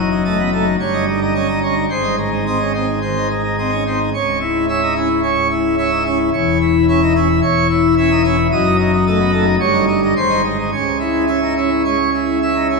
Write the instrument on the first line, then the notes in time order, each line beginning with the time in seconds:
pipe organ
Already playing: F#1 F#2
0.11 D#4
0.25 A3 D#5
0.39 B3
0.52 A3 D#4
0.80 G1 G2 C#5
0.94 D#4
1.07 D#4
1.22 D#4
1.35 C#4 D#5
1.48 D#4
1.62 C#4 D#4
1.90 G#1 G#2 C5
2.03 D#4
2.18 D#4
2.32 D#4
2.46 C4 D#5
2.60 C#4
2.74 C4 D#4
3.02 D#3 C5
3.16 D#4
3.31 D#4
3.44 D#4
3.58 C4 D#5
3.73 C#4
3.86 C4 D#4
4.14 C#1 C#2 C#5
4.41 E4
4.69 C#4 E5
4.83 D#4
4.96 C#4 E4
5.23 G#2 C#5
5.50 E4
5.78 C#4 E5
5.92 D#4
6.06 C#4 E4
6.34 E1 E2 C#5
6.61 E4
6.88 C#4 E5
7.03 D#4
7.15 C#4 E4
7.42 E1 E2 C#5
7.70 E4
7.97 C#4 E5
8.11 D#4
8.24 C#4 E4
8.51 F#1 F#2 D#5
8.65 D#4
8.79 D#4
8.94 D#4
9.07 A3 D#5
9.20 B3
9.32 A3 D#4
9.60 G1 G2 C#5
9.74 D#4
9.88 D#4
10.03 D#4
10.16 G#1 G#2 C5
10.30 D#4
10.45 D#4
10.59 D#4
10.73 C#2 C#3 C#5
11.00 E4
11.28 C#4 E5
11.43 D#4
11.57 C#4 E4
11.85 G#3 C#5
12.14 E4
12.42 C#4 E5
12.56 D#4
12.70 C#4 E4